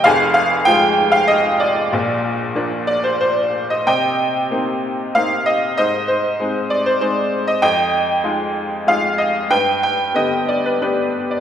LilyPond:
<<
  \new Staff \with { instrumentName = "Upright piano" } { \time 3/4 \key bes \mixolydian \tempo 4 = 95 << { f''8 f''8 g''8. f''16 ees''8 d''8~ | d''4. d''16 c''16 c''8. ees''16 | \key c \minor g''2 f''8 ees''8 | ees''8 c''4 d''16 c''16 c''8. ees''16 |
g''2 f''8 ees''8 | g''8 g''8 ees''8 d''16 b'16 b'8. d''16 | } \\ { aes'4. r4 f'8~ | f'2~ f'8 r8 | ees''2 r4 | c''4. r4. |
ees''2 r4 | b'4. r4. | } >> }
  \new Staff \with { instrumentName = "Upright piano" } { \time 3/4 \key bes \mixolydian <f,, f,>4 <f aes>4 r4 | <bes,, bes,>4 <f bes d'>4 r4 | \key c \minor c4 <bes c' ees'>4 <bes c' ees'>4 | aes,4 <aes c' ees'>4 <aes c' ees'>4 |
f,4 <aes ees' f'>4 <aes ees' f'>4 | g,4 <d b g'>4 <b d' g'>4 | }
>>